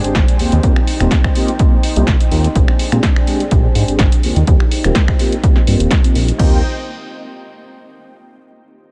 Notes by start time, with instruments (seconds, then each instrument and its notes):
Already playing: string machine D4 G#4 C5 G5
0.04 analog synth bass G#1, analog polysynth G#3 C4 D4 G4, closed hi-hat
0.15 analog synth bass G#1, kick, snare, closed hi-hat
0.28 closed hi-hat
0.39 analog synth bass D#2, analog polysynth A#3 C4 F4 G4, string machine D#4, open hi-hat
0.52 analog synth bass D#2, closed hi-hat
0.63 analog synth bass D#2, analog polysynth A#3 C4 F4 G4, kick, closed hi-hat
0.76 finger snap
0.87 open hi-hat
1.00 analog synth bass D#1, analog polysynth A#3 C4 F4 G4, finger snap, closed hi-hat
1.11 kick, snare, closed hi-hat
1.24 finger snap, kick
1.35 analog polysynth A#3 C4 F4 G4, open hi-hat
1.48 closed hi-hat
1.59 analog polysynth A#3 C4 F4 G4, kick, closed hi-hat
1.83 open hi-hat
1.96 analog synth bass C2, analog polysynth A#3 C4 F4 G4, closed hi-hat
2.07 analog synth bass C2, kick, snare, closed hi-hat
2.20 closed hi-hat
2.31 analog synth bass D#2, analog polysynth A#3 C4 F4 G4, open hi-hat
2.44 closed hi-hat
2.55 analog synth bass A#1, analog polysynth G#3 C4 D4 G4, string machine D4 G#4 C5, kick, closed hi-hat
2.68 finger snap
2.79 open hi-hat
2.92 analog synth bass A#2, analog polysynth G#3 C4 D4 G4, finger snap, closed hi-hat
3.03 kick, snare, closed hi-hat
3.16 finger snap
3.27 analog polysynth G#3 C4 D4 G4, open hi-hat
3.40 closed hi-hat
3.51 analog synth bass A#1, analog polysynth G#3 C4 D4 G4, kick, closed hi-hat
3.75 analog synth bass G#2, open hi-hat
3.88 analog synth bass G#1, analog polysynth G#3 C4 D4 G4, closed hi-hat
3.99 analog synth bass G#1, kick, snare, closed hi-hat
4.12 closed hi-hat
4.23 analog synth bass D#2, analog polysynth A#3 C4 F4 G4, string machine D#4 G5, open hi-hat
4.36 analog synth bass D#2, closed hi-hat
4.47 analog synth bass D#2, analog polysynth A#3 C4 F4 G4, kick, closed hi-hat
4.60 finger snap
4.71 open hi-hat
4.84 analog synth bass D#1, analog polysynth A#3 C4 F4 G4, finger snap, closed hi-hat
4.95 kick, snare, closed hi-hat
5.08 finger snap, kick
5.19 analog polysynth A#3 C4 F4 G4, open hi-hat
5.32 closed hi-hat
5.43 analog polysynth A#3 C4 F4 G4, kick, closed hi-hat
5.56 snare
5.67 analog synth bass G2, analog polysynth A#3 C4 F4 G4, open hi-hat
5.80 analog synth bass D#1, closed hi-hat
5.91 kick, snare, closed hi-hat
6.03 analog polysynth A#3 C4 F4 G4, closed hi-hat
6.15 analog synth bass A#1, open hi-hat
6.28 closed hi-hat
6.38 analog synth bass D#2, analog polysynth A#3 C4 F4 G4, string machine D#4 C5 G5, kick, crash